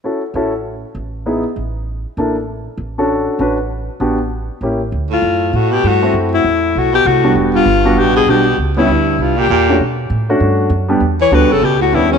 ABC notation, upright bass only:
X:1
M:4/4
L:1/8
Q:"Swing" 1/4=197
K:Amix
V:1 name="Upright bass" clef=bass
z2 A,,,3 z A,,,2- | A,,, z A,,,3 z A,,,2- | A,,, z A,,,3 z A,,,2- | A,,, z A,,,3 z A,,,2 |
D,,2 F,,2 A,,2 G,,2 | F,,2 E,,2 B,,,2 =C,,2 | E,,,2 G,,,2 A,,,2 B,,,2 | C,,2 D,,2 =C,,2 E,,2 |
B,,2 A,,2 G,,2 F,,2 | E,,2 (3D,, B,,, G,,, C,,2 ^D,,2 |]